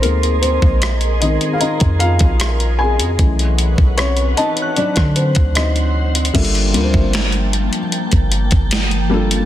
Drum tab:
CC |--------------------------------|--------------------------------|x-------------------------------|
HH |x-x-x---x-x-x-x-x-x-x-x-x-x---x-|x-x-x---x-x-x-x-x-x-x-x-x-x---xx|xxx-x---x-x-x-x-x-x-x-x-x-x---x-|
SD |--------r---------------r-------|--------r---------r-----r-------|--------o---------------o-------|
BD |------o-----------o---o---------|o-----o-----------o---o---------|o-----o-----------o---o---------|